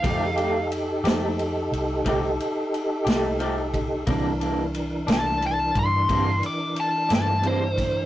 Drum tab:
RD |xxxxxxxxxxxx|xxxxxxxxxxxx|
SD |---o-----o--|---o-----o-o|
BD |o-----o----o|o----oo----o|